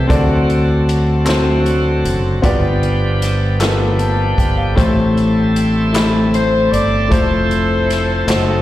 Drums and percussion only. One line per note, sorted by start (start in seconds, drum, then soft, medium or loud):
0.10 kick loud
0.10 closed hi-hat medium
0.50 closed hi-hat soft
0.89 closed hi-hat medium
1.26 snare loud
1.26 clap medium
1.26 closed hi-hat medium
1.66 closed hi-hat soft
2.05 closed hi-hat medium
2.44 kick loud
2.44 closed hi-hat medium
2.83 closed hi-hat soft
3.22 snare soft
3.22 closed hi-hat medium
3.61 snare loud
3.61 clap medium
3.61 closed hi-hat medium
3.99 closed hi-hat soft
4.38 kick medium
4.38 closed hi-hat medium
4.78 kick loud
4.78 closed hi-hat medium
5.17 closed hi-hat soft
5.56 closed hi-hat medium
5.94 snare loud
5.94 clap medium
5.94 closed hi-hat medium
6.34 closed hi-hat soft
6.74 closed hi-hat medium
7.12 kick loud
7.12 closed hi-hat medium
7.51 closed hi-hat soft
7.90 snare soft
7.90 closed hi-hat medium
8.28 snare loud
8.28 clap medium
8.28 closed hi-hat loud